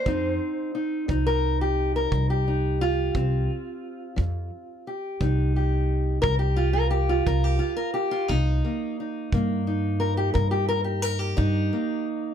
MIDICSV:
0, 0, Header, 1, 4, 480
1, 0, Start_track
1, 0, Tempo, 685714
1, 41, Time_signature, 12, 3, 24, 8
1, 8639, End_track
2, 0, Start_track
2, 0, Title_t, "Steel-string acoustic guitar"
2, 0, Program_c, 0, 25
2, 0, Note_on_c, 0, 72, 94
2, 41, Note_on_c, 0, 53, 69
2, 44, Note_on_c, 0, 60, 52
2, 53, Note_on_c, 0, 63, 46
2, 474, Note_off_c, 0, 53, 0
2, 520, Note_off_c, 0, 63, 0
2, 523, Note_on_c, 0, 63, 46
2, 757, Note_on_c, 0, 53, 64
2, 762, Note_off_c, 0, 63, 0
2, 765, Note_on_c, 0, 63, 46
2, 883, Note_off_c, 0, 72, 0
2, 886, Note_on_c, 0, 70, 85
2, 1125, Note_off_c, 0, 70, 0
2, 1129, Note_on_c, 0, 67, 66
2, 1193, Note_off_c, 0, 53, 0
2, 1366, Note_off_c, 0, 67, 0
2, 1371, Note_on_c, 0, 70, 76
2, 1487, Note_on_c, 0, 53, 67
2, 1607, Note_off_c, 0, 70, 0
2, 1610, Note_on_c, 0, 67, 64
2, 1730, Note_off_c, 0, 63, 0
2, 1733, Note_on_c, 0, 63, 43
2, 1918, Note_off_c, 0, 53, 0
2, 1966, Note_off_c, 0, 63, 0
2, 1969, Note_on_c, 0, 65, 99
2, 2207, Note_off_c, 0, 60, 0
2, 2208, Note_on_c, 0, 53, 65
2, 2210, Note_on_c, 0, 60, 42
2, 2448, Note_off_c, 0, 67, 0
2, 2639, Note_off_c, 0, 53, 0
2, 2914, Note_on_c, 0, 53, 68
2, 3352, Note_off_c, 0, 53, 0
2, 3408, Note_off_c, 0, 65, 0
2, 3411, Note_on_c, 0, 67, 43
2, 3649, Note_on_c, 0, 53, 68
2, 3652, Note_on_c, 0, 63, 47
2, 3891, Note_off_c, 0, 67, 0
2, 3894, Note_on_c, 0, 67, 43
2, 4080, Note_off_c, 0, 53, 0
2, 4349, Note_off_c, 0, 67, 0
2, 4352, Note_on_c, 0, 70, 104
2, 4369, Note_on_c, 0, 53, 67
2, 4373, Note_off_c, 0, 60, 0
2, 4469, Note_off_c, 0, 70, 0
2, 4472, Note_on_c, 0, 67, 72
2, 4592, Note_off_c, 0, 63, 0
2, 4595, Note_on_c, 0, 65, 90
2, 4710, Note_off_c, 0, 67, 0
2, 4713, Note_on_c, 0, 70, 81
2, 4800, Note_off_c, 0, 53, 0
2, 4831, Note_off_c, 0, 70, 0
2, 4834, Note_on_c, 0, 67, 87
2, 4956, Note_off_c, 0, 65, 0
2, 4965, Note_on_c, 0, 65, 79
2, 5080, Note_off_c, 0, 67, 0
2, 5086, Note_on_c, 0, 70, 93
2, 5091, Note_on_c, 0, 53, 67
2, 5207, Note_off_c, 0, 70, 0
2, 5207, Note_on_c, 0, 67, 69
2, 5304, Note_off_c, 0, 65, 0
2, 5312, Note_on_c, 0, 65, 74
2, 5433, Note_off_c, 0, 67, 0
2, 5436, Note_on_c, 0, 70, 88
2, 5521, Note_off_c, 0, 53, 0
2, 5553, Note_off_c, 0, 70, 0
2, 5556, Note_on_c, 0, 67, 78
2, 5671, Note_off_c, 0, 65, 0
2, 5679, Note_on_c, 0, 65, 89
2, 5798, Note_off_c, 0, 65, 0
2, 5798, Note_on_c, 0, 63, 90
2, 5802, Note_off_c, 0, 67, 0
2, 5812, Note_on_c, 0, 48, 73
2, 6053, Note_on_c, 0, 58, 48
2, 6242, Note_off_c, 0, 48, 0
2, 6283, Note_off_c, 0, 63, 0
2, 6300, Note_on_c, 0, 63, 41
2, 6529, Note_on_c, 0, 48, 75
2, 6532, Note_off_c, 0, 58, 0
2, 6535, Note_on_c, 0, 58, 51
2, 6767, Note_off_c, 0, 63, 0
2, 6770, Note_on_c, 0, 63, 49
2, 6960, Note_off_c, 0, 48, 0
2, 6998, Note_on_c, 0, 70, 72
2, 7118, Note_off_c, 0, 70, 0
2, 7121, Note_on_c, 0, 67, 71
2, 7233, Note_off_c, 0, 67, 0
2, 7236, Note_on_c, 0, 70, 76
2, 7245, Note_on_c, 0, 48, 66
2, 7354, Note_off_c, 0, 70, 0
2, 7357, Note_on_c, 0, 67, 73
2, 7477, Note_off_c, 0, 67, 0
2, 7480, Note_on_c, 0, 70, 98
2, 7588, Note_off_c, 0, 70, 0
2, 7591, Note_on_c, 0, 67, 74
2, 7678, Note_off_c, 0, 48, 0
2, 7715, Note_off_c, 0, 67, 0
2, 7715, Note_on_c, 0, 70, 84
2, 7832, Note_off_c, 0, 70, 0
2, 7832, Note_on_c, 0, 67, 84
2, 7954, Note_off_c, 0, 63, 0
2, 7957, Note_on_c, 0, 63, 91
2, 7961, Note_on_c, 0, 48, 63
2, 8201, Note_off_c, 0, 58, 0
2, 8210, Note_on_c, 0, 58, 53
2, 8396, Note_off_c, 0, 48, 0
2, 8439, Note_off_c, 0, 67, 0
2, 8639, Note_off_c, 0, 58, 0
2, 8639, Note_off_c, 0, 63, 0
2, 8639, End_track
3, 0, Start_track
3, 0, Title_t, "Upright bass"
3, 0, Program_c, 1, 32
3, 44, Note_on_c, 1, 41, 94
3, 259, Note_off_c, 1, 41, 0
3, 763, Note_on_c, 1, 36, 78
3, 1456, Note_off_c, 1, 36, 0
3, 1485, Note_on_c, 1, 36, 88
3, 2177, Note_off_c, 1, 36, 0
3, 2207, Note_on_c, 1, 36, 84
3, 2422, Note_off_c, 1, 36, 0
3, 2926, Note_on_c, 1, 41, 96
3, 3142, Note_off_c, 1, 41, 0
3, 3643, Note_on_c, 1, 36, 89
3, 4337, Note_off_c, 1, 36, 0
3, 4367, Note_on_c, 1, 36, 95
3, 5059, Note_off_c, 1, 36, 0
3, 5087, Note_on_c, 1, 36, 94
3, 5303, Note_off_c, 1, 36, 0
3, 5804, Note_on_c, 1, 36, 102
3, 6022, Note_off_c, 1, 36, 0
3, 6527, Note_on_c, 1, 43, 91
3, 7219, Note_off_c, 1, 43, 0
3, 7245, Note_on_c, 1, 43, 88
3, 7938, Note_off_c, 1, 43, 0
3, 7967, Note_on_c, 1, 43, 95
3, 8183, Note_off_c, 1, 43, 0
3, 8639, End_track
4, 0, Start_track
4, 0, Title_t, "Drums"
4, 42, Note_on_c, 9, 36, 60
4, 112, Note_off_c, 9, 36, 0
4, 763, Note_on_c, 9, 36, 58
4, 833, Note_off_c, 9, 36, 0
4, 1483, Note_on_c, 9, 36, 69
4, 1553, Note_off_c, 9, 36, 0
4, 2204, Note_on_c, 9, 36, 66
4, 2274, Note_off_c, 9, 36, 0
4, 2925, Note_on_c, 9, 36, 57
4, 2995, Note_off_c, 9, 36, 0
4, 3645, Note_on_c, 9, 36, 62
4, 3715, Note_off_c, 9, 36, 0
4, 4365, Note_on_c, 9, 36, 73
4, 4435, Note_off_c, 9, 36, 0
4, 5086, Note_on_c, 9, 36, 59
4, 5156, Note_off_c, 9, 36, 0
4, 5806, Note_on_c, 9, 36, 63
4, 5876, Note_off_c, 9, 36, 0
4, 6527, Note_on_c, 9, 36, 68
4, 6597, Note_off_c, 9, 36, 0
4, 7246, Note_on_c, 9, 36, 65
4, 7316, Note_off_c, 9, 36, 0
4, 7966, Note_on_c, 9, 36, 59
4, 8036, Note_off_c, 9, 36, 0
4, 8639, End_track
0, 0, End_of_file